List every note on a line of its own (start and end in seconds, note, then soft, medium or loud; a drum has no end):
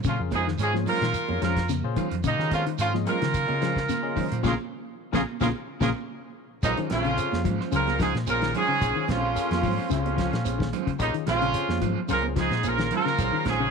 0.04 0.18 F2 medium
0.04 0.19 A#2 medium
0.04 0.29 C#3 loud
0.04 0.19 C#4 medium
0.04 0.19 F4 medium
0.04 kick loud
0.04 closed hi-hat medium
0.04 high conga soft
0.04 low conga medium
0.04 shekere medium
0.19 0.57 F2 loud
0.19 0.43 C#4 medium
0.19 0.43 F4 medium
0.19 0.43 G#4 medium
0.19 0.43 A#4 medium
0.31 0.46 G#2 medium
0.31 0.50 G#3 medium
0.31 0.50 C#4 medium
0.31 0.46 D#4 medium
0.31 0.50 F4 medium
0.31 0.46 G#4 medium
0.31 0.50 C5 medium
0.31 kick medium
0.31 closed hi-hat medium
0.31 high conga loud
0.31 shekere soft
0.48 0.71 D#3 medium
0.48 snare soft
0.58 0.85 G#2 medium
0.58 0.72 G#2 medium
0.58 0.77 G#3 medium
0.58 0.72 C#4 medium
0.58 0.77 C#4 medium
0.58 0.78 F4 medium
0.58 0.73 G#4 loud
0.58 0.78 C5 medium
0.58 closed hi-hat medium
0.58 high conga soft
0.58 shekere medium
0.73 0.98 F3 medium
0.73 0.98 C#4 medium
0.73 0.98 F4 medium
0.73 0.98 G#4 medium
0.73 0.98 C#5 medium
0.73 snare soft
0.73 high conga medium
0.86 1.39 A#2 medium
0.86 1.04 G#3 medium
0.86 1.04 C#4 medium
0.86 1.05 F4 medium
0.86 1.38 F4 medium
0.86 1.38 A#4 loud
0.86 1.05 C5 medium
0.86 open hi-hat medium
0.86 low conga medium
0.86 shekere soft
1.01 1.13 A#2 medium
1.01 1.26 D#3 medium
1.01 snare medium
1.01 closed hi-hat medium
1.14 closed hi-hat medium
1.14 high conga soft
1.14 shekere loud
1.28 1.41 F2 medium
1.28 1.53 C#4 medium
1.28 1.53 F4 medium
1.28 1.53 G#4 medium
1.28 1.53 C#5 medium
1.28 high conga medium
1.41 1.82 F2 medium
1.41 1.68 A#2 medium
1.41 1.66 F3 medium
1.41 1.59 G#3 medium
1.41 1.59 C#4 medium
1.41 1.60 F4 medium
1.41 1.68 F4 medium
1.41 1.68 A#4 medium
1.41 1.60 C5 medium
1.41 snare medium
1.41 closed hi-hat medium
1.41 shekere soft
1.57 kick medium
1.57 snare medium
1.57 closed hi-hat medium
1.69 1.93 C#3 medium
1.69 snare soft
1.69 closed hi-hat medium
1.69 high conga medium
1.69 shekere medium
1.84 1.96 A#2 medium
1.84 2.08 C#4 medium
1.84 2.07 F4 medium
1.84 2.08 G#4 medium
1.84 2.08 C5 loud
1.96 2.21 D#3 medium
1.96 2.14 G#3 medium
1.96 2.14 C#4 medium
1.96 2.14 F4 medium
1.96 2.15 C5 medium
1.96 kick medium
1.96 closed hi-hat medium
1.96 low conga medium
1.96 shekere soft
2.11 2.23 F2 medium
2.11 closed hi-hat medium
2.24 2.50 D#2 medium
2.24 2.38 A#2 medium
2.24 2.48 C#3 medium
2.24 2.50 A#3 medium
2.24 2.51 D#4 loud
2.24 kick loud
2.24 closed hi-hat medium
2.24 high conga soft
2.24 shekere medium
2.39 2.65 D#3 loud
2.39 2.62 C#4 medium
2.39 2.62 F4 medium
2.39 2.62 G#4 medium
2.39 2.62 A#4 medium
2.39 snare soft
2.51 2.64 F2 medium
2.51 2.69 G#3 medium
2.51 2.69 C#4 medium
2.51 2.65 C#4 medium
2.51 2.64 F4 medium
2.51 2.69 F4 medium
2.51 2.70 C5 medium
2.51 kick medium
2.51 snare soft
2.51 closed hi-hat medium
2.51 high conga loud
2.51 shekere soft
2.66 2.90 D#3 medium
2.66 closed hi-hat medium
2.78 2.91 F2 medium
2.78 3.05 G#2 medium
2.78 2.92 C#4 medium
2.78 2.91 F4 loud
2.78 closed hi-hat medium
2.78 high conga soft
2.78 shekere medium
2.93 3.18 F3 medium
2.93 3.17 C#4 medium
2.93 3.17 F4 medium
2.93 3.17 G#4 medium
2.93 3.17 D#5 medium
2.93 snare soft
2.93 high conga medium
3.06 4.39 A#2 medium
3.06 3.24 G#3 medium
3.06 3.24 C#4 medium
3.06 4.40 F4 medium
3.06 3.24 F4 medium
3.06 4.40 A#4 loud
3.06 3.25 C5 medium
3.06 closed hi-hat medium
3.06 low conga medium
3.06 shekere soft
3.22 3.47 C#3 medium
3.22 3.45 D#3 medium
3.22 snare medium
3.22 closed hi-hat soft
3.34 kick medium
3.34 closed hi-hat medium
3.34 high conga soft
3.34 shekere medium
3.47 4.27 C#3 medium
3.47 3.71 C#4 medium
3.47 3.72 F4 medium
3.47 3.72 G#4 medium
3.47 3.72 D#5 medium
3.47 high conga medium
3.61 3.86 F3 medium
3.61 3.78 G#3 medium
3.61 3.79 C#4 medium
3.61 3.79 F4 medium
3.61 3.79 C5 medium
3.61 snare medium
3.61 closed hi-hat medium
3.61 shekere soft
3.76 kick medium
3.76 snare medium
3.89 4.13 C#3 medium
3.89 snare soft
3.89 closed hi-hat medium
3.89 high conga medium
3.89 shekere medium
4.02 4.26 C#4 loud
4.02 4.27 F4 medium
4.02 4.26 G#4 medium
4.02 4.27 D#5 loud
4.16 4.40 D#3 medium
4.16 4.31 G#3 medium
4.16 4.31 C#4 medium
4.16 4.30 C5 medium
4.16 muted clean electric guitar stroke medium
4.16 kick medium
4.16 open hi-hat medium
4.16 low conga medium
4.16 shekere soft
4.31 4.43 A#2 medium
4.31 4.42 C#4 soft
4.31 4.42 F4 soft
4.31 4.43 C5 medium
4.31 closed hi-hat soft
4.43 4.55 A#1 medium
4.43 4.53 A#2 loud
4.43 4.51 A#2 medium
4.43 4.53 C#3 loud
4.43 4.53 F3 loud
4.43 4.52 C#4 medium
4.43 4.53 F4 medium
4.43 4.52 F4 medium
4.43 4.53 G#4 medium
4.43 4.53 G#4 loud
4.43 4.52 G#4 medium
4.43 4.53 A#4 medium
4.43 4.52 A#4 medium
4.43 4.52 A#4 loud
4.43 kick medium
4.43 snare medium
4.43 high conga loud
4.43 shekere loud
5.12 5.23 A#1 loud
5.12 5.21 A#2 medium
5.12 5.20 A#2 medium
5.12 5.21 C#3 medium
5.12 5.21 F3 medium
5.12 5.21 C#4 medium
5.12 5.21 F4 medium
5.12 5.20 F4 loud
5.12 5.21 F4 medium
5.12 5.21 G#4 medium
5.12 5.20 G#4 loud
5.12 5.21 A#4 medium
5.12 5.20 A#4 loud
5.12 kick medium
5.12 snare medium
5.12 high conga loud
5.12 shekere loud
5.41 5.50 A#1 loud
5.41 5.49 A#2 loud
5.41 5.47 A#2 loud
5.41 5.49 C#3 loud
5.41 5.49 F3 loud
5.41 5.47 C#4 medium
5.41 5.49 F4 medium
5.41 5.47 F4 medium
5.41 5.49 F4 medium
5.41 5.49 G#4 loud
5.41 5.47 G#4 medium
5.41 5.49 G#4 medium
5.41 5.49 A#4 medium
5.41 5.47 A#4 medium
5.41 5.49 A#4 medium
5.41 kick medium
5.41 snare medium
5.41 high conga loud
5.41 shekere loud
5.80 5.92 A#1 medium
5.80 5.90 A#2 loud
5.80 5.88 A#2 medium
5.80 5.90 C#3 loud
5.80 5.90 F3 medium
5.80 5.89 C#4 loud
5.80 5.90 F4 medium
5.80 5.88 F4 medium
5.80 5.90 F4 medium
5.80 5.90 G#4 loud
5.80 5.90 G#4 medium
5.80 5.88 G#4 medium
5.80 5.90 A#4 medium
5.80 5.90 A#4 loud
5.80 5.88 A#4 loud
5.80 kick medium
5.80 snare medium
5.80 high conga loud
5.80 shekere medium
6.63 6.77 A#1 medium
6.63 6.75 D#2 medium
6.63 6.78 G#3 medium
6.63 6.75 A#3 medium
6.63 6.87 C#4 medium
6.63 6.78 C#4 medium
6.63 6.76 D#4 loud
6.63 6.87 F4 medium
6.63 6.78 F4 medium
6.63 6.87 G#4 medium
6.63 6.87 C5 medium
6.63 6.77 C5 medium
6.63 kick medium
6.63 closed hi-hat medium
6.63 high conga soft
6.63 low conga medium
6.63 shekere medium
6.77 7.02 D#3 medium
6.77 6.90 C#4 soft
6.77 6.90 F4 soft
6.77 6.90 C5 medium
6.77 closed hi-hat soft
6.89 7.16 A#1 medium
6.89 7.40 F2 loud
6.89 7.08 G#3 medium
6.89 7.41 C#4 medium
6.89 7.08 C#4 medium
6.89 7.41 F4 loud
6.89 7.08 F4 medium
6.89 7.08 C5 medium
6.89 snare medium
6.89 closed hi-hat medium
6.89 high conga loud
6.89 shekere soft
7.05 7.29 C#3 medium
7.05 closed hi-hat soft
7.17 7.41 C#4 medium
7.17 7.41 F4 medium
7.17 7.41 G#4 medium
7.17 7.41 C5 medium
7.17 closed hi-hat medium
7.17 shekere medium
7.32 7.44 F2 medium
7.32 snare medium
7.32 high conga medium
7.44 7.58 G#2 medium
7.44 7.68 F3 medium
7.44 7.60 G#3 medium
7.44 7.60 C#4 medium
7.44 7.60 F4 medium
7.44 7.60 C5 medium
7.44 kick medium
7.44 closed hi-hat medium
7.44 low conga medium
7.44 shekere soft
7.61 7.76 C#4 soft
7.61 7.76 F4 soft
7.61 7.75 C5 medium
7.61 muted fingered electric bass stroke soft
7.61 snare soft
7.72 8.12 C#2 medium
7.72 7.98 A#2 medium
7.72 7.96 C#3 medium
7.72 7.96 C#4 medium
7.72 7.96 F4 medium
7.72 7.99 F4 medium
7.72 7.96 G#4 medium
7.72 7.99 A#4 loud
7.72 7.96 C5 medium
7.72 closed hi-hat medium
7.72 high conga soft
7.72 low conga medium
7.72 shekere medium
7.88 snare soft
7.88 high conga medium
7.99 8.13 G#2 medium
7.99 8.23 F3 medium
7.99 8.17 G#3 medium
7.99 8.17 C#4 medium
7.99 8.13 D#4 medium
7.99 8.17 F4 medium
7.99 8.13 G#4 loud
7.99 8.17 C5 medium
7.99 kick medium
7.99 snare medium
7.99 closed hi-hat medium
7.99 shekere soft
8.15 8.26 A#2 medium
8.15 snare medium
8.15 closed hi-hat soft
8.27 8.52 A#1 medium
8.27 8.53 A#2 medium
8.27 8.51 C#4 medium
8.27 8.51 F4 medium
8.27 8.53 F4 medium
8.27 8.51 G#4 medium
8.27 8.53 A#4 loud
8.27 8.51 C5 medium
8.27 closed hi-hat medium
8.27 high conga medium
8.27 shekere medium
8.41 8.65 D#3 medium
8.41 snare medium
8.41 closed hi-hat soft
8.55 9.11 G#2 medium
8.55 8.71 G#3 medium
8.55 9.10 C#4 medium
8.55 8.72 C#4 medium
8.55 8.72 F4 medium
8.55 9.06 G#4 loud
8.55 8.72 C5 medium
8.55 closed hi-hat medium
8.55 low conga medium
8.55 shekere soft
8.68 8.79 C#3 medium
8.81 8.95 A#1 medium
8.81 9.05 C#4 medium
8.81 9.05 F4 medium
8.81 9.05 G#4 medium
8.81 9.05 C5 medium
8.81 kick loud
8.81 closed hi-hat medium
8.81 high conga soft
8.81 shekere medium
8.96 9.20 D#3 medium
9.08 9.34 A#1 medium
9.08 9.90 F2 medium
9.08 9.26 G#3 medium
9.08 9.91 C#4 medium
9.08 9.26 C#4 medium
9.08 9.90 F4 medium
9.08 9.27 F4 medium
9.08 9.27 C5 medium
9.08 kick medium
9.08 snare medium
9.08 closed hi-hat medium
9.08 high conga loud
9.08 shekere soft
9.22 muted clean electric guitar stroke medium
9.35 9.59 C#4 medium
9.35 9.60 F4 medium
9.35 9.60 G#4 medium
9.35 9.60 A#4 medium
9.35 closed hi-hat medium
9.35 shekere medium
9.51 9.62 F2 loud
9.51 snare medium
9.51 closed hi-hat soft
9.51 high conga medium
9.62 9.77 G#2 medium
9.62 9.87 F3 medium
9.62 9.78 G#3 medium
9.62 9.78 F4 medium
9.62 9.78 C5 medium
9.62 kick medium
9.62 open hi-hat medium
9.62 low conga medium
9.62 shekere soft
9.79 9.95 C#4 soft
9.79 9.94 F4 medium
9.79 9.94 C5 soft
9.79 muted fingered electric bass stroke soft
9.90 10.30 C#2 loud
9.90 10.68 F2 medium
9.90 10.14 C#3 medium
9.90 10.14 C#4 medium
9.90 10.70 C#4 medium
9.90 10.14 F4 medium
9.90 10.69 F4 medium
9.90 10.14 G#4 medium
9.90 10.14 C5 medium
9.90 snare soft
9.90 closed hi-hat medium
9.90 high conga soft
9.90 shekere medium
10.06 closed hi-hat soft
10.06 high conga loud
10.17 10.41 F3 medium
10.17 10.36 C#4 medium
10.17 10.36 F4 medium
10.17 10.36 C5 medium
10.17 kick medium
10.17 snare medium
10.17 closed hi-hat medium
10.17 shekere soft
10.33 10.44 A#2 loud
10.33 snare medium
10.33 closed hi-hat soft
10.45 10.71 A#1 medium
10.45 10.69 C#4 medium
10.45 10.69 F4 medium
10.45 10.69 G#4 medium
10.45 10.69 C5 medium
10.45 closed hi-hat medium
10.45 high conga medium
10.45 shekere medium
10.59 10.83 D#3 medium
10.59 kick medium
10.59 snare medium
10.73 10.90 G#3 medium
10.73 10.90 C#4 medium
10.73 10.90 F4 medium
10.73 10.90 C5 medium
10.73 closed hi-hat medium
10.73 low conga medium
10.73 shekere soft
10.86 10.98 C#3 medium
10.86 kick medium
10.86 closed hi-hat soft
10.99 11.13 A#1 medium
10.99 11.11 D#2 medium
10.99 11.12 A#3 medium
10.99 11.23 C#4 medium
10.99 11.12 D#4 loud
10.99 11.24 F4 medium
10.99 11.24 G#4 medium
10.99 11.24 D#5 medium
10.99 kick loud
10.99 closed hi-hat medium
10.99 high conga soft
10.99 shekere medium
11.14 11.38 D#3 medium
11.14 closed hi-hat soft
11.26 11.53 A#1 medium
11.26 11.77 F2 medium
11.26 11.44 G#3 medium
11.26 11.78 C#4 loud
11.26 11.45 C#4 medium
11.26 11.45 F4 medium
11.26 11.79 F4 loud
11.26 11.45 C5 medium
11.26 snare medium
11.26 closed hi-hat medium
11.26 high conga medium
11.26 shekere soft
11.42 11.66 C#3 medium
11.42 closed hi-hat soft
11.54 11.78 C#4 medium
11.54 11.78 F4 medium
11.54 11.78 G#4 medium
11.54 11.78 C5 medium
11.54 closed hi-hat medium
11.54 high conga soft
11.54 shekere medium
11.69 11.81 F2 loud
11.69 snare medium
11.69 high conga medium
11.81 11.95 G#2 medium
11.81 12.05 F3 medium
11.81 11.99 G#3 medium
11.81 11.99 C#4 medium
11.81 11.99 F4 medium
11.81 11.99 C5 medium
11.81 kick medium
11.81 closed hi-hat medium
11.81 high conga medium
11.81 low conga medium
11.81 shekere soft
12.09 12.49 C#2 loud
12.09 12.22 A#2 loud
12.09 12.33 C#3 medium
12.09 12.33 C#4 medium
12.09 12.33 F4 medium
12.09 12.22 F4 medium
12.09 12.33 G#4 medium
12.09 12.23 A#4 loud
12.09 12.33 C5 medium
12.09 closed hi-hat medium
12.09 high conga soft
12.09 low conga medium
12.09 shekere loud
12.23 high conga loud
12.36 12.66 G#2 medium
12.36 12.60 F3 medium
12.36 12.53 G#3 medium
12.36 12.54 C#4 medium
12.36 12.68 D#4 loud
12.36 12.54 F4 medium
12.36 12.63 G#4 loud
12.36 12.54 C5 medium
12.36 kick medium
12.36 snare medium
12.36 closed hi-hat medium
12.36 shekere soft
12.51 12.63 A#2 loud
12.51 snare medium
12.51 closed hi-hat soft
12.63 12.90 A#1 medium
12.63 12.91 A#2 medium
12.63 12.87 C#4 medium
12.63 12.87 F4 medium
12.63 12.92 F4 medium
12.63 12.87 G#4 medium
12.63 12.92 A#4 loud
12.63 12.88 C5 medium
12.63 closed hi-hat medium
12.63 high conga medium
12.63 shekere medium
12.78 13.02 D#3 medium
12.78 snare medium
12.78 closed hi-hat soft
12.91 13.49 A#2 loud
12.91 13.08 G#3 medium
12.91 13.08 C#4 medium
12.91 13.09 F4 medium
12.91 13.49 F4 medium
12.91 13.44 A#4 loud
12.91 13.09 C5 medium
12.91 closed hi-hat medium
12.91 low conga medium
12.91 shekere soft
13.05 13.17 C#3 medium
13.05 snare soft
13.18 13.32 A#1 medium
13.18 13.42 C#4 medium
13.18 13.43 F4 medium
13.18 13.43 G#4 medium
13.18 13.43 C5 medium
13.18 kick loud
13.18 closed hi-hat medium
13.18 high conga soft
13.18 low conga medium
13.18 shekere medium
13.33 13.57 D#3 medium
13.33 muted fingered electric bass stroke soft
13.45 13.71 A#1 medium
13.45 13.71 G#2 medium
13.45 13.63 G#3 medium
13.45 13.71 C#4 loud
13.45 13.63 F4 medium
13.45 13.71 G#4 loud
13.45 13.63 C5 medium
13.45 kick medium
13.45 snare medium
13.45 closed hi-hat medium
13.45 high conga loud
13.45 shekere soft
13.60 13.71 C#3 medium